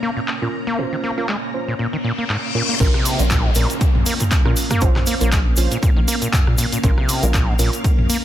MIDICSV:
0, 0, Header, 1, 8, 480
1, 0, Start_track
1, 0, Key_signature, -5, "minor"
1, 0, Tempo, 504202
1, 746, Time_signature, 4, 2, 24, 8
1, 7848, End_track
2, 0, Start_track
2, 0, Title_t, "String machine"
2, 0, Program_c, 0, 50
2, 0, Note_on_c, 0, 58, 78
2, 0, Note_on_c, 0, 61, 73
2, 0, Note_on_c, 0, 70, 73
2, 0, Note_on_c, 0, 82, 91
2, 2630, Note_off_c, 0, 58, 0
2, 2630, Note_off_c, 0, 61, 0
2, 2630, Note_off_c, 0, 70, 0
2, 2654, Note_off_c, 0, 82, 0
2, 2665, Note_on_c, 0, 61, 76
2, 2665, Note_on_c, 0, 77, 95
2, 2666, Note_on_c, 0, 58, 84
2, 2666, Note_on_c, 0, 70, 79
2, 7848, Note_off_c, 0, 58, 0
2, 7848, Note_off_c, 0, 61, 0
2, 7848, Note_off_c, 0, 70, 0
2, 7848, Note_off_c, 0, 77, 0
2, 7848, End_track
3, 0, Start_track
3, 0, Title_t, "Synth stab"
3, 0, Program_c, 1, 62
3, 400, Note_on_c, 1, 61, 91
3, 400, Note_on_c, 1, 65, 85
3, 400, Note_on_c, 1, 70, 101
3, 522, Note_off_c, 1, 65, 0
3, 522, Note_off_c, 1, 70, 0
3, 523, Note_off_c, 1, 61, 0
3, 746, Note_on_c, 1, 61, 90
3, 746, Note_on_c, 1, 72, 99
3, 747, Note_on_c, 1, 65, 84
3, 1088, Note_off_c, 1, 61, 0
3, 1088, Note_off_c, 1, 65, 0
3, 1088, Note_off_c, 1, 72, 0
3, 1120, Note_on_c, 1, 61, 85
3, 1120, Note_on_c, 1, 65, 77
3, 1120, Note_on_c, 1, 70, 96
3, 1194, Note_off_c, 1, 61, 0
3, 1194, Note_off_c, 1, 65, 0
3, 1194, Note_off_c, 1, 70, 0
3, 1466, Note_on_c, 1, 61, 90
3, 1466, Note_on_c, 1, 65, 78
3, 1467, Note_on_c, 1, 72, 99
3, 1613, Note_off_c, 1, 61, 0
3, 1613, Note_off_c, 1, 65, 0
3, 1613, Note_off_c, 1, 72, 0
3, 2426, Note_on_c, 1, 61, 83
3, 2426, Note_on_c, 1, 65, 76
3, 2426, Note_on_c, 1, 70, 92
3, 2520, Note_off_c, 1, 61, 0
3, 2520, Note_off_c, 1, 65, 0
3, 2520, Note_off_c, 1, 70, 0
3, 2666, Note_on_c, 1, 61, 100
3, 2666, Note_on_c, 1, 65, 89
3, 2666, Note_on_c, 1, 70, 109
3, 2760, Note_off_c, 1, 61, 0
3, 2760, Note_off_c, 1, 65, 0
3, 2760, Note_off_c, 1, 70, 0
3, 3040, Note_on_c, 1, 61, 87
3, 3040, Note_on_c, 1, 65, 77
3, 3040, Note_on_c, 1, 70, 97
3, 3115, Note_off_c, 1, 61, 0
3, 3115, Note_off_c, 1, 65, 0
3, 3115, Note_off_c, 1, 70, 0
3, 3387, Note_on_c, 1, 61, 78
3, 3387, Note_on_c, 1, 65, 73
3, 3387, Note_on_c, 1, 70, 89
3, 3533, Note_off_c, 1, 61, 0
3, 3533, Note_off_c, 1, 65, 0
3, 3533, Note_off_c, 1, 70, 0
3, 4240, Note_on_c, 1, 61, 96
3, 4240, Note_on_c, 1, 65, 88
3, 4240, Note_on_c, 1, 70, 100
3, 4362, Note_off_c, 1, 61, 0
3, 4362, Note_off_c, 1, 65, 0
3, 4362, Note_off_c, 1, 70, 0
3, 4585, Note_on_c, 1, 61, 90
3, 4585, Note_on_c, 1, 65, 84
3, 4585, Note_on_c, 1, 72, 101
3, 4927, Note_off_c, 1, 61, 0
3, 4927, Note_off_c, 1, 65, 0
3, 4927, Note_off_c, 1, 72, 0
3, 4960, Note_on_c, 1, 61, 89
3, 4960, Note_on_c, 1, 65, 82
3, 4960, Note_on_c, 1, 70, 98
3, 5034, Note_off_c, 1, 61, 0
3, 5034, Note_off_c, 1, 65, 0
3, 5035, Note_off_c, 1, 70, 0
3, 5306, Note_on_c, 1, 65, 87
3, 5306, Note_on_c, 1, 72, 99
3, 5307, Note_on_c, 1, 61, 88
3, 5453, Note_off_c, 1, 61, 0
3, 5453, Note_off_c, 1, 65, 0
3, 5453, Note_off_c, 1, 72, 0
3, 6506, Note_on_c, 1, 61, 104
3, 6507, Note_on_c, 1, 65, 92
3, 6507, Note_on_c, 1, 70, 108
3, 6600, Note_off_c, 1, 61, 0
3, 6600, Note_off_c, 1, 65, 0
3, 6600, Note_off_c, 1, 70, 0
3, 6880, Note_on_c, 1, 61, 86
3, 6880, Note_on_c, 1, 65, 78
3, 6880, Note_on_c, 1, 70, 95
3, 6954, Note_off_c, 1, 61, 0
3, 6955, Note_off_c, 1, 65, 0
3, 6955, Note_off_c, 1, 70, 0
3, 7226, Note_on_c, 1, 61, 83
3, 7227, Note_on_c, 1, 65, 73
3, 7227, Note_on_c, 1, 70, 88
3, 7373, Note_off_c, 1, 61, 0
3, 7373, Note_off_c, 1, 65, 0
3, 7373, Note_off_c, 1, 70, 0
3, 7848, End_track
4, 0, Start_track
4, 0, Title_t, "Acid bass"
4, 0, Program_c, 2, 38
4, 25, Note_on_c, 2, 58, 98
4, 99, Note_off_c, 2, 58, 0
4, 158, Note_on_c, 2, 46, 75
4, 194, Note_off_c, 2, 46, 0
4, 399, Note_on_c, 2, 46, 77
4, 458, Note_off_c, 2, 46, 0
4, 639, Note_on_c, 2, 58, 105
4, 746, Note_on_c, 2, 46, 81
4, 760, Note_off_c, 2, 58, 0
4, 820, Note_off_c, 2, 46, 0
4, 880, Note_on_c, 2, 51, 78
4, 915, Note_off_c, 2, 51, 0
4, 986, Note_on_c, 2, 58, 101
4, 1060, Note_off_c, 2, 58, 0
4, 1120, Note_on_c, 2, 58, 79
4, 1208, Note_off_c, 2, 58, 0
4, 1226, Note_on_c, 2, 56, 100
4, 1300, Note_off_c, 2, 56, 0
4, 1600, Note_on_c, 2, 46, 77
4, 1658, Note_off_c, 2, 46, 0
4, 1706, Note_on_c, 2, 46, 80
4, 1780, Note_off_c, 2, 46, 0
4, 1839, Note_on_c, 2, 51, 76
4, 1875, Note_off_c, 2, 51, 0
4, 1945, Note_on_c, 2, 46, 102
4, 2019, Note_off_c, 2, 46, 0
4, 2079, Note_on_c, 2, 58, 77
4, 2138, Note_off_c, 2, 58, 0
4, 2185, Note_on_c, 2, 44, 81
4, 2259, Note_off_c, 2, 44, 0
4, 2426, Note_on_c, 2, 46, 102
4, 2500, Note_off_c, 2, 46, 0
4, 2560, Note_on_c, 2, 58, 76
4, 2619, Note_off_c, 2, 58, 0
4, 2666, Note_on_c, 2, 46, 100
4, 2740, Note_off_c, 2, 46, 0
4, 2800, Note_on_c, 2, 48, 80
4, 3041, Note_on_c, 2, 58, 78
4, 3055, Note_off_c, 2, 48, 0
4, 3076, Note_off_c, 2, 58, 0
4, 3146, Note_on_c, 2, 46, 99
4, 3281, Note_on_c, 2, 44, 101
4, 3296, Note_off_c, 2, 46, 0
4, 3339, Note_off_c, 2, 44, 0
4, 3386, Note_on_c, 2, 46, 106
4, 3497, Note_off_c, 2, 46, 0
4, 3866, Note_on_c, 2, 58, 99
4, 3940, Note_off_c, 2, 58, 0
4, 4000, Note_on_c, 2, 46, 77
4, 4035, Note_off_c, 2, 46, 0
4, 4240, Note_on_c, 2, 46, 78
4, 4298, Note_off_c, 2, 46, 0
4, 4480, Note_on_c, 2, 58, 104
4, 4585, Note_on_c, 2, 46, 82
4, 4599, Note_off_c, 2, 58, 0
4, 4659, Note_off_c, 2, 46, 0
4, 4720, Note_on_c, 2, 51, 78
4, 4755, Note_off_c, 2, 51, 0
4, 4826, Note_on_c, 2, 58, 104
4, 4900, Note_off_c, 2, 58, 0
4, 4959, Note_on_c, 2, 58, 78
4, 5048, Note_off_c, 2, 58, 0
4, 5066, Note_on_c, 2, 56, 100
4, 5140, Note_off_c, 2, 56, 0
4, 5439, Note_on_c, 2, 46, 79
4, 5498, Note_off_c, 2, 46, 0
4, 5546, Note_on_c, 2, 46, 84
4, 5620, Note_off_c, 2, 46, 0
4, 5679, Note_on_c, 2, 51, 78
4, 5715, Note_off_c, 2, 51, 0
4, 5786, Note_on_c, 2, 58, 104
4, 5860, Note_off_c, 2, 58, 0
4, 5920, Note_on_c, 2, 46, 76
4, 5979, Note_off_c, 2, 46, 0
4, 6268, Note_on_c, 2, 46, 108
4, 6341, Note_off_c, 2, 46, 0
4, 6402, Note_on_c, 2, 46, 78
4, 6459, Note_off_c, 2, 46, 0
4, 6507, Note_on_c, 2, 46, 98
4, 6580, Note_off_c, 2, 46, 0
4, 6642, Note_on_c, 2, 48, 78
4, 6881, Note_on_c, 2, 58, 79
4, 6895, Note_off_c, 2, 48, 0
4, 6916, Note_off_c, 2, 58, 0
4, 6987, Note_on_c, 2, 46, 102
4, 7121, Note_on_c, 2, 44, 103
4, 7135, Note_off_c, 2, 46, 0
4, 7179, Note_off_c, 2, 44, 0
4, 7228, Note_on_c, 2, 46, 107
4, 7338, Note_off_c, 2, 46, 0
4, 7707, Note_on_c, 2, 58, 108
4, 7780, Note_off_c, 2, 58, 0
4, 7848, End_track
5, 0, Start_track
5, 0, Title_t, "Sub bass"
5, 0, Program_c, 3, 38
5, 2666, Note_on_c, 3, 34, 104
5, 2763, Note_off_c, 3, 34, 0
5, 3039, Note_on_c, 3, 34, 94
5, 3338, Note_off_c, 3, 34, 0
5, 3386, Note_on_c, 3, 34, 92
5, 3483, Note_off_c, 3, 34, 0
5, 3759, Note_on_c, 3, 34, 84
5, 3836, Note_off_c, 3, 34, 0
5, 4239, Note_on_c, 3, 46, 90
5, 4316, Note_off_c, 3, 46, 0
5, 4586, Note_on_c, 3, 34, 105
5, 4683, Note_off_c, 3, 34, 0
5, 4960, Note_on_c, 3, 34, 96
5, 5259, Note_off_c, 3, 34, 0
5, 5305, Note_on_c, 3, 34, 92
5, 5402, Note_off_c, 3, 34, 0
5, 5679, Note_on_c, 3, 34, 83
5, 5756, Note_off_c, 3, 34, 0
5, 6159, Note_on_c, 3, 46, 90
5, 6236, Note_off_c, 3, 46, 0
5, 6507, Note_on_c, 3, 34, 105
5, 6603, Note_off_c, 3, 34, 0
5, 6879, Note_on_c, 3, 34, 91
5, 7178, Note_off_c, 3, 34, 0
5, 7226, Note_on_c, 3, 34, 93
5, 7323, Note_off_c, 3, 34, 0
5, 7600, Note_on_c, 3, 34, 82
5, 7677, Note_off_c, 3, 34, 0
5, 7848, End_track
6, 0, Start_track
6, 0, Title_t, "Downlifter"
6, 0, Program_c, 4, 103
6, 2666, Note_on_c, 4, 60, 79
6, 6507, Note_off_c, 4, 60, 0
6, 7848, End_track
7, 0, Start_track
7, 0, Title_t, "Reverse cymbal"
7, 0, Program_c, 5, 119
7, 1706, Note_on_c, 5, 60, 75
7, 2666, Note_off_c, 5, 60, 0
7, 7848, End_track
8, 0, Start_track
8, 0, Title_t, "Drums"
8, 268, Note_on_c, 9, 39, 114
8, 364, Note_off_c, 9, 39, 0
8, 1229, Note_on_c, 9, 39, 117
8, 1324, Note_off_c, 9, 39, 0
8, 2190, Note_on_c, 9, 39, 118
8, 2285, Note_off_c, 9, 39, 0
8, 2666, Note_on_c, 9, 36, 122
8, 2667, Note_on_c, 9, 42, 72
8, 2667, Note_on_c, 9, 49, 109
8, 2675, Note_on_c, 9, 82, 42
8, 2762, Note_off_c, 9, 36, 0
8, 2762, Note_off_c, 9, 42, 0
8, 2762, Note_off_c, 9, 49, 0
8, 2771, Note_off_c, 9, 82, 0
8, 2800, Note_on_c, 9, 37, 81
8, 2896, Note_off_c, 9, 37, 0
8, 2907, Note_on_c, 9, 46, 108
8, 2910, Note_on_c, 9, 82, 94
8, 3002, Note_off_c, 9, 46, 0
8, 3006, Note_off_c, 9, 82, 0
8, 3039, Note_on_c, 9, 82, 53
8, 3040, Note_on_c, 9, 42, 55
8, 3134, Note_off_c, 9, 82, 0
8, 3136, Note_off_c, 9, 42, 0
8, 3144, Note_on_c, 9, 82, 44
8, 3146, Note_on_c, 9, 36, 118
8, 3147, Note_on_c, 9, 42, 69
8, 3150, Note_on_c, 9, 39, 127
8, 3239, Note_off_c, 9, 82, 0
8, 3242, Note_off_c, 9, 36, 0
8, 3242, Note_off_c, 9, 42, 0
8, 3245, Note_off_c, 9, 39, 0
8, 3379, Note_on_c, 9, 82, 89
8, 3387, Note_on_c, 9, 46, 93
8, 3474, Note_off_c, 9, 82, 0
8, 3482, Note_off_c, 9, 46, 0
8, 3520, Note_on_c, 9, 42, 55
8, 3525, Note_on_c, 9, 82, 55
8, 3616, Note_off_c, 9, 42, 0
8, 3620, Note_off_c, 9, 82, 0
8, 3626, Note_on_c, 9, 36, 110
8, 3627, Note_on_c, 9, 42, 68
8, 3629, Note_on_c, 9, 82, 38
8, 3721, Note_off_c, 9, 36, 0
8, 3722, Note_off_c, 9, 42, 0
8, 3724, Note_off_c, 9, 82, 0
8, 3761, Note_on_c, 9, 45, 82
8, 3856, Note_off_c, 9, 45, 0
8, 3865, Note_on_c, 9, 82, 89
8, 3867, Note_on_c, 9, 46, 110
8, 3960, Note_off_c, 9, 82, 0
8, 3962, Note_off_c, 9, 46, 0
8, 3998, Note_on_c, 9, 82, 54
8, 4001, Note_on_c, 9, 42, 59
8, 4001, Note_on_c, 9, 45, 89
8, 4093, Note_off_c, 9, 82, 0
8, 4096, Note_off_c, 9, 42, 0
8, 4096, Note_off_c, 9, 45, 0
8, 4106, Note_on_c, 9, 36, 117
8, 4108, Note_on_c, 9, 42, 72
8, 4108, Note_on_c, 9, 82, 38
8, 4110, Note_on_c, 9, 39, 127
8, 4201, Note_off_c, 9, 36, 0
8, 4203, Note_off_c, 9, 42, 0
8, 4203, Note_off_c, 9, 82, 0
8, 4205, Note_off_c, 9, 39, 0
8, 4241, Note_on_c, 9, 37, 79
8, 4336, Note_off_c, 9, 37, 0
8, 4345, Note_on_c, 9, 82, 97
8, 4348, Note_on_c, 9, 46, 91
8, 4440, Note_off_c, 9, 82, 0
8, 4443, Note_off_c, 9, 46, 0
8, 4478, Note_on_c, 9, 82, 50
8, 4481, Note_on_c, 9, 37, 83
8, 4481, Note_on_c, 9, 42, 69
8, 4481, Note_on_c, 9, 45, 93
8, 4573, Note_off_c, 9, 82, 0
8, 4576, Note_off_c, 9, 37, 0
8, 4576, Note_off_c, 9, 42, 0
8, 4576, Note_off_c, 9, 45, 0
8, 4579, Note_on_c, 9, 82, 43
8, 4586, Note_on_c, 9, 36, 124
8, 4587, Note_on_c, 9, 42, 73
8, 4674, Note_off_c, 9, 82, 0
8, 4681, Note_off_c, 9, 36, 0
8, 4683, Note_off_c, 9, 42, 0
8, 4721, Note_on_c, 9, 37, 80
8, 4721, Note_on_c, 9, 45, 82
8, 4724, Note_on_c, 9, 39, 41
8, 4817, Note_off_c, 9, 37, 0
8, 4817, Note_off_c, 9, 45, 0
8, 4819, Note_off_c, 9, 39, 0
8, 4820, Note_on_c, 9, 82, 91
8, 4828, Note_on_c, 9, 46, 118
8, 4915, Note_off_c, 9, 82, 0
8, 4923, Note_off_c, 9, 46, 0
8, 4959, Note_on_c, 9, 82, 53
8, 4962, Note_on_c, 9, 42, 54
8, 5055, Note_off_c, 9, 82, 0
8, 5057, Note_off_c, 9, 42, 0
8, 5067, Note_on_c, 9, 36, 124
8, 5067, Note_on_c, 9, 42, 69
8, 5067, Note_on_c, 9, 82, 42
8, 5070, Note_on_c, 9, 39, 127
8, 5162, Note_off_c, 9, 36, 0
8, 5162, Note_off_c, 9, 82, 0
8, 5163, Note_off_c, 9, 42, 0
8, 5165, Note_off_c, 9, 39, 0
8, 5297, Note_on_c, 9, 82, 87
8, 5308, Note_on_c, 9, 46, 97
8, 5392, Note_off_c, 9, 82, 0
8, 5403, Note_off_c, 9, 46, 0
8, 5437, Note_on_c, 9, 82, 61
8, 5442, Note_on_c, 9, 42, 54
8, 5533, Note_off_c, 9, 82, 0
8, 5537, Note_off_c, 9, 42, 0
8, 5547, Note_on_c, 9, 36, 121
8, 5548, Note_on_c, 9, 42, 66
8, 5548, Note_on_c, 9, 82, 40
8, 5642, Note_off_c, 9, 36, 0
8, 5643, Note_off_c, 9, 42, 0
8, 5643, Note_off_c, 9, 82, 0
8, 5788, Note_on_c, 9, 46, 115
8, 5788, Note_on_c, 9, 82, 105
8, 5883, Note_off_c, 9, 46, 0
8, 5884, Note_off_c, 9, 82, 0
8, 5921, Note_on_c, 9, 82, 58
8, 5922, Note_on_c, 9, 42, 56
8, 6016, Note_off_c, 9, 82, 0
8, 6017, Note_off_c, 9, 42, 0
8, 6027, Note_on_c, 9, 36, 118
8, 6028, Note_on_c, 9, 42, 69
8, 6028, Note_on_c, 9, 45, 92
8, 6031, Note_on_c, 9, 39, 127
8, 6033, Note_on_c, 9, 82, 42
8, 6122, Note_off_c, 9, 36, 0
8, 6124, Note_off_c, 9, 42, 0
8, 6124, Note_off_c, 9, 45, 0
8, 6126, Note_off_c, 9, 39, 0
8, 6128, Note_off_c, 9, 82, 0
8, 6162, Note_on_c, 9, 37, 77
8, 6257, Note_off_c, 9, 37, 0
8, 6262, Note_on_c, 9, 82, 91
8, 6268, Note_on_c, 9, 46, 100
8, 6357, Note_off_c, 9, 82, 0
8, 6363, Note_off_c, 9, 46, 0
8, 6402, Note_on_c, 9, 42, 67
8, 6406, Note_on_c, 9, 82, 54
8, 6497, Note_off_c, 9, 42, 0
8, 6501, Note_off_c, 9, 82, 0
8, 6507, Note_on_c, 9, 36, 122
8, 6507, Note_on_c, 9, 42, 69
8, 6510, Note_on_c, 9, 82, 41
8, 6602, Note_off_c, 9, 36, 0
8, 6603, Note_off_c, 9, 42, 0
8, 6605, Note_off_c, 9, 82, 0
8, 6642, Note_on_c, 9, 37, 76
8, 6737, Note_off_c, 9, 37, 0
8, 6748, Note_on_c, 9, 46, 118
8, 6749, Note_on_c, 9, 82, 104
8, 6843, Note_off_c, 9, 46, 0
8, 6845, Note_off_c, 9, 82, 0
8, 6881, Note_on_c, 9, 42, 50
8, 6882, Note_on_c, 9, 82, 64
8, 6977, Note_off_c, 9, 42, 0
8, 6977, Note_off_c, 9, 82, 0
8, 6987, Note_on_c, 9, 36, 122
8, 6988, Note_on_c, 9, 42, 66
8, 6990, Note_on_c, 9, 39, 125
8, 6993, Note_on_c, 9, 82, 47
8, 7082, Note_off_c, 9, 36, 0
8, 7083, Note_off_c, 9, 42, 0
8, 7085, Note_off_c, 9, 39, 0
8, 7088, Note_off_c, 9, 82, 0
8, 7225, Note_on_c, 9, 82, 94
8, 7228, Note_on_c, 9, 46, 96
8, 7321, Note_off_c, 9, 82, 0
8, 7323, Note_off_c, 9, 46, 0
8, 7360, Note_on_c, 9, 82, 58
8, 7361, Note_on_c, 9, 42, 53
8, 7455, Note_off_c, 9, 82, 0
8, 7457, Note_off_c, 9, 42, 0
8, 7467, Note_on_c, 9, 36, 119
8, 7467, Note_on_c, 9, 42, 64
8, 7471, Note_on_c, 9, 82, 38
8, 7562, Note_off_c, 9, 36, 0
8, 7563, Note_off_c, 9, 42, 0
8, 7566, Note_off_c, 9, 82, 0
8, 7601, Note_on_c, 9, 45, 84
8, 7696, Note_off_c, 9, 45, 0
8, 7707, Note_on_c, 9, 46, 112
8, 7709, Note_on_c, 9, 82, 99
8, 7802, Note_off_c, 9, 46, 0
8, 7804, Note_off_c, 9, 82, 0
8, 7848, End_track
0, 0, End_of_file